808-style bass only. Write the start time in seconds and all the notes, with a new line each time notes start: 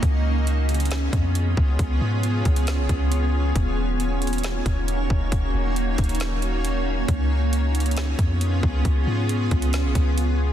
0.03 C#2
1.13 F2
1.57 C#2
1.79 C#2
2.01 G#2
2.46 C#2
2.78 B1
2.89 C#2
3.56 D#1
4.66 D#1
5.10 D#1
5.32 D#1
5.54 D#1
5.98 D#1
7.08 C#2
8.19 F2
8.63 C#2
8.85 C#2
9.07 G#2
9.51 C#2
9.84 B1
9.95 C#2